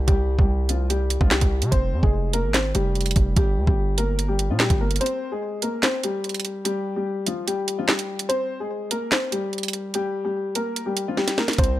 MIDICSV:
0, 0, Header, 1, 4, 480
1, 0, Start_track
1, 0, Tempo, 410959
1, 91, Time_signature, 4, 2, 24, 8
1, 13779, End_track
2, 0, Start_track
2, 0, Title_t, "Grand piano"
2, 0, Program_c, 0, 0
2, 86, Note_on_c, 0, 67, 98
2, 95, Note_on_c, 0, 55, 79
2, 427, Note_off_c, 0, 67, 0
2, 431, Note_off_c, 0, 55, 0
2, 451, Note_on_c, 0, 67, 74
2, 461, Note_on_c, 0, 55, 65
2, 789, Note_off_c, 0, 67, 0
2, 794, Note_off_c, 0, 55, 0
2, 809, Note_on_c, 0, 65, 72
2, 819, Note_on_c, 0, 53, 56
2, 1011, Note_off_c, 0, 65, 0
2, 1017, Note_off_c, 0, 53, 0
2, 1047, Note_on_c, 0, 67, 85
2, 1056, Note_on_c, 0, 55, 70
2, 1387, Note_off_c, 0, 67, 0
2, 1392, Note_off_c, 0, 55, 0
2, 1413, Note_on_c, 0, 65, 84
2, 1423, Note_on_c, 0, 53, 61
2, 1513, Note_off_c, 0, 65, 0
2, 1519, Note_off_c, 0, 53, 0
2, 1533, Note_on_c, 0, 67, 72
2, 1543, Note_on_c, 0, 55, 57
2, 1983, Note_off_c, 0, 67, 0
2, 1988, Note_off_c, 0, 55, 0
2, 2003, Note_on_c, 0, 72, 111
2, 2012, Note_on_c, 0, 60, 81
2, 2345, Note_off_c, 0, 72, 0
2, 2350, Note_off_c, 0, 60, 0
2, 2367, Note_on_c, 0, 68, 74
2, 2376, Note_on_c, 0, 56, 54
2, 2707, Note_off_c, 0, 68, 0
2, 2712, Note_off_c, 0, 56, 0
2, 2729, Note_on_c, 0, 70, 86
2, 2739, Note_on_c, 0, 58, 63
2, 2932, Note_off_c, 0, 70, 0
2, 2937, Note_off_c, 0, 58, 0
2, 2969, Note_on_c, 0, 72, 78
2, 2978, Note_on_c, 0, 60, 60
2, 3171, Note_off_c, 0, 72, 0
2, 3177, Note_off_c, 0, 60, 0
2, 3207, Note_on_c, 0, 67, 84
2, 3216, Note_on_c, 0, 55, 66
2, 3885, Note_off_c, 0, 67, 0
2, 3890, Note_off_c, 0, 55, 0
2, 3939, Note_on_c, 0, 67, 101
2, 3948, Note_on_c, 0, 55, 76
2, 4270, Note_off_c, 0, 67, 0
2, 4278, Note_off_c, 0, 55, 0
2, 4287, Note_on_c, 0, 67, 77
2, 4297, Note_on_c, 0, 55, 59
2, 4627, Note_off_c, 0, 67, 0
2, 4632, Note_off_c, 0, 55, 0
2, 4649, Note_on_c, 0, 70, 80
2, 4658, Note_on_c, 0, 58, 61
2, 4988, Note_off_c, 0, 70, 0
2, 4993, Note_off_c, 0, 58, 0
2, 5004, Note_on_c, 0, 67, 70
2, 5013, Note_on_c, 0, 55, 56
2, 5208, Note_off_c, 0, 67, 0
2, 5214, Note_off_c, 0, 55, 0
2, 5261, Note_on_c, 0, 65, 77
2, 5271, Note_on_c, 0, 53, 58
2, 5358, Note_off_c, 0, 65, 0
2, 5363, Note_off_c, 0, 53, 0
2, 5373, Note_on_c, 0, 67, 89
2, 5383, Note_on_c, 0, 55, 65
2, 5574, Note_off_c, 0, 67, 0
2, 5580, Note_off_c, 0, 55, 0
2, 5615, Note_on_c, 0, 70, 76
2, 5624, Note_on_c, 0, 58, 61
2, 5815, Note_off_c, 0, 70, 0
2, 5820, Note_off_c, 0, 58, 0
2, 5848, Note_on_c, 0, 72, 106
2, 5857, Note_on_c, 0, 60, 90
2, 6187, Note_off_c, 0, 72, 0
2, 6193, Note_off_c, 0, 60, 0
2, 6211, Note_on_c, 0, 68, 74
2, 6220, Note_on_c, 0, 56, 61
2, 6549, Note_off_c, 0, 68, 0
2, 6554, Note_off_c, 0, 56, 0
2, 6571, Note_on_c, 0, 70, 74
2, 6579, Note_on_c, 0, 58, 64
2, 6772, Note_off_c, 0, 70, 0
2, 6778, Note_off_c, 0, 58, 0
2, 6818, Note_on_c, 0, 72, 83
2, 6828, Note_on_c, 0, 60, 76
2, 7017, Note_off_c, 0, 72, 0
2, 7022, Note_off_c, 0, 60, 0
2, 7054, Note_on_c, 0, 67, 84
2, 7063, Note_on_c, 0, 55, 67
2, 7729, Note_off_c, 0, 67, 0
2, 7734, Note_off_c, 0, 55, 0
2, 7765, Note_on_c, 0, 67, 98
2, 7774, Note_on_c, 0, 55, 78
2, 8106, Note_off_c, 0, 67, 0
2, 8111, Note_off_c, 0, 55, 0
2, 8131, Note_on_c, 0, 67, 73
2, 8140, Note_on_c, 0, 55, 64
2, 8469, Note_off_c, 0, 67, 0
2, 8474, Note_off_c, 0, 55, 0
2, 8488, Note_on_c, 0, 65, 72
2, 8497, Note_on_c, 0, 53, 60
2, 8691, Note_off_c, 0, 65, 0
2, 8696, Note_off_c, 0, 53, 0
2, 8725, Note_on_c, 0, 67, 84
2, 8735, Note_on_c, 0, 55, 70
2, 9066, Note_off_c, 0, 67, 0
2, 9071, Note_off_c, 0, 55, 0
2, 9092, Note_on_c, 0, 65, 80
2, 9102, Note_on_c, 0, 53, 60
2, 9193, Note_off_c, 0, 65, 0
2, 9198, Note_off_c, 0, 53, 0
2, 9212, Note_on_c, 0, 67, 75
2, 9221, Note_on_c, 0, 55, 58
2, 9663, Note_off_c, 0, 67, 0
2, 9668, Note_off_c, 0, 55, 0
2, 9682, Note_on_c, 0, 72, 116
2, 9691, Note_on_c, 0, 60, 80
2, 10024, Note_off_c, 0, 72, 0
2, 10029, Note_off_c, 0, 60, 0
2, 10046, Note_on_c, 0, 68, 74
2, 10055, Note_on_c, 0, 56, 55
2, 10387, Note_off_c, 0, 68, 0
2, 10391, Note_off_c, 0, 56, 0
2, 10409, Note_on_c, 0, 70, 86
2, 10418, Note_on_c, 0, 58, 62
2, 10611, Note_off_c, 0, 70, 0
2, 10617, Note_off_c, 0, 58, 0
2, 10647, Note_on_c, 0, 72, 80
2, 10657, Note_on_c, 0, 60, 60
2, 10850, Note_off_c, 0, 72, 0
2, 10856, Note_off_c, 0, 60, 0
2, 10886, Note_on_c, 0, 67, 84
2, 10895, Note_on_c, 0, 55, 67
2, 11565, Note_off_c, 0, 67, 0
2, 11570, Note_off_c, 0, 55, 0
2, 11618, Note_on_c, 0, 67, 100
2, 11627, Note_on_c, 0, 55, 76
2, 11950, Note_off_c, 0, 67, 0
2, 11958, Note_off_c, 0, 55, 0
2, 11967, Note_on_c, 0, 67, 78
2, 11976, Note_on_c, 0, 55, 59
2, 12307, Note_off_c, 0, 67, 0
2, 12312, Note_off_c, 0, 55, 0
2, 12330, Note_on_c, 0, 70, 80
2, 12339, Note_on_c, 0, 58, 61
2, 12669, Note_off_c, 0, 70, 0
2, 12674, Note_off_c, 0, 58, 0
2, 12684, Note_on_c, 0, 67, 69
2, 12694, Note_on_c, 0, 55, 59
2, 12889, Note_off_c, 0, 67, 0
2, 12894, Note_off_c, 0, 55, 0
2, 12942, Note_on_c, 0, 65, 76
2, 12951, Note_on_c, 0, 53, 59
2, 13038, Note_off_c, 0, 65, 0
2, 13044, Note_off_c, 0, 53, 0
2, 13053, Note_on_c, 0, 67, 87
2, 13063, Note_on_c, 0, 55, 64
2, 13254, Note_off_c, 0, 67, 0
2, 13259, Note_off_c, 0, 55, 0
2, 13295, Note_on_c, 0, 70, 79
2, 13304, Note_on_c, 0, 58, 59
2, 13495, Note_off_c, 0, 70, 0
2, 13500, Note_off_c, 0, 58, 0
2, 13529, Note_on_c, 0, 72, 112
2, 13538, Note_on_c, 0, 60, 93
2, 13779, Note_off_c, 0, 60, 0
2, 13779, Note_off_c, 0, 72, 0
2, 13779, End_track
3, 0, Start_track
3, 0, Title_t, "808-style bass"
3, 0, Program_c, 1, 38
3, 91, Note_on_c, 1, 36, 109
3, 437, Note_off_c, 1, 36, 0
3, 451, Note_on_c, 1, 36, 102
3, 1372, Note_off_c, 1, 36, 0
3, 1411, Note_on_c, 1, 36, 99
3, 1642, Note_off_c, 1, 36, 0
3, 1652, Note_on_c, 1, 36, 104
3, 1891, Note_on_c, 1, 48, 101
3, 1909, Note_off_c, 1, 36, 0
3, 2005, Note_off_c, 1, 48, 0
3, 2011, Note_on_c, 1, 29, 105
3, 2251, Note_on_c, 1, 41, 101
3, 2268, Note_off_c, 1, 29, 0
3, 2365, Note_off_c, 1, 41, 0
3, 2371, Note_on_c, 1, 29, 106
3, 2851, Note_on_c, 1, 32, 96
3, 2868, Note_off_c, 1, 29, 0
3, 3193, Note_off_c, 1, 32, 0
3, 3211, Note_on_c, 1, 29, 104
3, 3672, Note_off_c, 1, 29, 0
3, 3691, Note_on_c, 1, 29, 101
3, 3922, Note_off_c, 1, 29, 0
3, 3931, Note_on_c, 1, 31, 104
3, 4171, Note_on_c, 1, 38, 103
3, 4188, Note_off_c, 1, 31, 0
3, 4285, Note_off_c, 1, 38, 0
3, 4291, Note_on_c, 1, 31, 107
3, 5251, Note_on_c, 1, 46, 98
3, 5268, Note_off_c, 1, 31, 0
3, 5479, Note_off_c, 1, 46, 0
3, 5491, Note_on_c, 1, 31, 101
3, 5836, Note_off_c, 1, 31, 0
3, 13531, Note_on_c, 1, 36, 106
3, 13779, Note_off_c, 1, 36, 0
3, 13779, End_track
4, 0, Start_track
4, 0, Title_t, "Drums"
4, 91, Note_on_c, 9, 36, 112
4, 91, Note_on_c, 9, 42, 82
4, 207, Note_off_c, 9, 42, 0
4, 208, Note_off_c, 9, 36, 0
4, 451, Note_on_c, 9, 36, 91
4, 568, Note_off_c, 9, 36, 0
4, 806, Note_on_c, 9, 42, 85
4, 923, Note_off_c, 9, 42, 0
4, 1052, Note_on_c, 9, 42, 74
4, 1169, Note_off_c, 9, 42, 0
4, 1289, Note_on_c, 9, 42, 82
4, 1406, Note_off_c, 9, 42, 0
4, 1411, Note_on_c, 9, 36, 102
4, 1528, Note_off_c, 9, 36, 0
4, 1531, Note_on_c, 9, 38, 117
4, 1531, Note_on_c, 9, 39, 97
4, 1648, Note_off_c, 9, 38, 0
4, 1648, Note_off_c, 9, 39, 0
4, 1651, Note_on_c, 9, 36, 88
4, 1651, Note_on_c, 9, 42, 84
4, 1768, Note_off_c, 9, 36, 0
4, 1768, Note_off_c, 9, 42, 0
4, 1890, Note_on_c, 9, 42, 79
4, 2007, Note_off_c, 9, 42, 0
4, 2010, Note_on_c, 9, 42, 86
4, 2011, Note_on_c, 9, 36, 113
4, 2127, Note_off_c, 9, 42, 0
4, 2128, Note_off_c, 9, 36, 0
4, 2371, Note_on_c, 9, 36, 95
4, 2488, Note_off_c, 9, 36, 0
4, 2726, Note_on_c, 9, 42, 86
4, 2843, Note_off_c, 9, 42, 0
4, 2970, Note_on_c, 9, 38, 104
4, 2970, Note_on_c, 9, 39, 81
4, 2972, Note_on_c, 9, 42, 71
4, 3086, Note_off_c, 9, 39, 0
4, 3087, Note_off_c, 9, 38, 0
4, 3089, Note_off_c, 9, 42, 0
4, 3209, Note_on_c, 9, 42, 84
4, 3326, Note_off_c, 9, 42, 0
4, 3451, Note_on_c, 9, 42, 48
4, 3511, Note_off_c, 9, 42, 0
4, 3511, Note_on_c, 9, 42, 57
4, 3571, Note_off_c, 9, 42, 0
4, 3571, Note_on_c, 9, 42, 69
4, 3631, Note_off_c, 9, 42, 0
4, 3631, Note_on_c, 9, 42, 77
4, 3689, Note_off_c, 9, 42, 0
4, 3689, Note_on_c, 9, 42, 70
4, 3692, Note_on_c, 9, 36, 99
4, 3806, Note_off_c, 9, 42, 0
4, 3808, Note_off_c, 9, 36, 0
4, 3930, Note_on_c, 9, 42, 83
4, 3931, Note_on_c, 9, 36, 113
4, 4047, Note_off_c, 9, 42, 0
4, 4048, Note_off_c, 9, 36, 0
4, 4291, Note_on_c, 9, 36, 90
4, 4407, Note_off_c, 9, 36, 0
4, 4646, Note_on_c, 9, 42, 85
4, 4763, Note_off_c, 9, 42, 0
4, 4891, Note_on_c, 9, 42, 74
4, 5008, Note_off_c, 9, 42, 0
4, 5129, Note_on_c, 9, 42, 81
4, 5245, Note_off_c, 9, 42, 0
4, 5370, Note_on_c, 9, 38, 117
4, 5370, Note_on_c, 9, 39, 90
4, 5487, Note_off_c, 9, 38, 0
4, 5487, Note_off_c, 9, 39, 0
4, 5491, Note_on_c, 9, 36, 93
4, 5491, Note_on_c, 9, 42, 80
4, 5607, Note_off_c, 9, 42, 0
4, 5608, Note_off_c, 9, 36, 0
4, 5731, Note_on_c, 9, 42, 66
4, 5791, Note_off_c, 9, 42, 0
4, 5791, Note_on_c, 9, 42, 67
4, 5851, Note_off_c, 9, 42, 0
4, 5851, Note_on_c, 9, 42, 69
4, 5911, Note_off_c, 9, 42, 0
4, 5911, Note_on_c, 9, 42, 69
4, 6027, Note_off_c, 9, 42, 0
4, 6566, Note_on_c, 9, 42, 86
4, 6683, Note_off_c, 9, 42, 0
4, 6809, Note_on_c, 9, 38, 100
4, 6809, Note_on_c, 9, 39, 81
4, 6811, Note_on_c, 9, 42, 73
4, 6926, Note_off_c, 9, 38, 0
4, 6926, Note_off_c, 9, 39, 0
4, 6928, Note_off_c, 9, 42, 0
4, 7049, Note_on_c, 9, 42, 81
4, 7166, Note_off_c, 9, 42, 0
4, 7291, Note_on_c, 9, 42, 49
4, 7351, Note_off_c, 9, 42, 0
4, 7351, Note_on_c, 9, 42, 58
4, 7410, Note_off_c, 9, 42, 0
4, 7410, Note_on_c, 9, 42, 68
4, 7471, Note_off_c, 9, 42, 0
4, 7471, Note_on_c, 9, 42, 78
4, 7529, Note_off_c, 9, 42, 0
4, 7529, Note_on_c, 9, 42, 73
4, 7646, Note_off_c, 9, 42, 0
4, 7770, Note_on_c, 9, 42, 84
4, 7886, Note_off_c, 9, 42, 0
4, 8486, Note_on_c, 9, 42, 84
4, 8603, Note_off_c, 9, 42, 0
4, 8732, Note_on_c, 9, 42, 74
4, 8848, Note_off_c, 9, 42, 0
4, 8969, Note_on_c, 9, 42, 83
4, 9085, Note_off_c, 9, 42, 0
4, 9210, Note_on_c, 9, 38, 117
4, 9210, Note_on_c, 9, 39, 93
4, 9327, Note_off_c, 9, 38, 0
4, 9327, Note_off_c, 9, 39, 0
4, 9331, Note_on_c, 9, 42, 84
4, 9447, Note_off_c, 9, 42, 0
4, 9569, Note_on_c, 9, 42, 81
4, 9686, Note_off_c, 9, 42, 0
4, 9690, Note_on_c, 9, 42, 81
4, 9807, Note_off_c, 9, 42, 0
4, 10406, Note_on_c, 9, 42, 87
4, 10523, Note_off_c, 9, 42, 0
4, 10649, Note_on_c, 9, 39, 80
4, 10650, Note_on_c, 9, 38, 105
4, 10651, Note_on_c, 9, 42, 72
4, 10766, Note_off_c, 9, 39, 0
4, 10767, Note_off_c, 9, 38, 0
4, 10768, Note_off_c, 9, 42, 0
4, 10889, Note_on_c, 9, 42, 82
4, 11006, Note_off_c, 9, 42, 0
4, 11131, Note_on_c, 9, 42, 46
4, 11191, Note_off_c, 9, 42, 0
4, 11191, Note_on_c, 9, 42, 57
4, 11251, Note_off_c, 9, 42, 0
4, 11251, Note_on_c, 9, 42, 67
4, 11310, Note_off_c, 9, 42, 0
4, 11310, Note_on_c, 9, 42, 76
4, 11368, Note_off_c, 9, 42, 0
4, 11368, Note_on_c, 9, 42, 73
4, 11485, Note_off_c, 9, 42, 0
4, 11609, Note_on_c, 9, 42, 84
4, 11726, Note_off_c, 9, 42, 0
4, 12326, Note_on_c, 9, 42, 84
4, 12442, Note_off_c, 9, 42, 0
4, 12571, Note_on_c, 9, 42, 72
4, 12688, Note_off_c, 9, 42, 0
4, 12809, Note_on_c, 9, 42, 82
4, 12925, Note_off_c, 9, 42, 0
4, 13050, Note_on_c, 9, 38, 61
4, 13167, Note_off_c, 9, 38, 0
4, 13170, Note_on_c, 9, 42, 82
4, 13171, Note_on_c, 9, 38, 64
4, 13287, Note_off_c, 9, 38, 0
4, 13287, Note_off_c, 9, 42, 0
4, 13290, Note_on_c, 9, 38, 95
4, 13407, Note_off_c, 9, 38, 0
4, 13411, Note_on_c, 9, 38, 98
4, 13411, Note_on_c, 9, 42, 67
4, 13471, Note_off_c, 9, 42, 0
4, 13471, Note_on_c, 9, 42, 70
4, 13527, Note_off_c, 9, 38, 0
4, 13531, Note_off_c, 9, 42, 0
4, 13531, Note_on_c, 9, 36, 114
4, 13531, Note_on_c, 9, 42, 69
4, 13591, Note_off_c, 9, 42, 0
4, 13591, Note_on_c, 9, 42, 68
4, 13647, Note_off_c, 9, 36, 0
4, 13708, Note_off_c, 9, 42, 0
4, 13779, End_track
0, 0, End_of_file